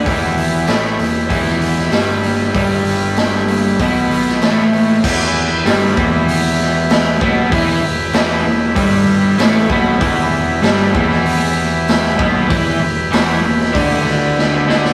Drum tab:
CC |----------------|----------------|x---------------|----------------|
HH |o-o-o-o-o-o-o-o-|o-o-o-o-o-o-o-o-|----o---o---o---|o---o---o---o---|
SD |----o----o-oo---|----o------oo---|----o-----o-o---|----o-------o---|
BD |o-------o-------|o-------o-------|o-----o-------o-|o-------o-----o-|

CC |----------------|----------------|
HH |o---o---o---o---|o---o---o-------|
SD |----o--o----o---|----o--o--o-o-oo|
BD |o-----o-------o-|o-------o-------|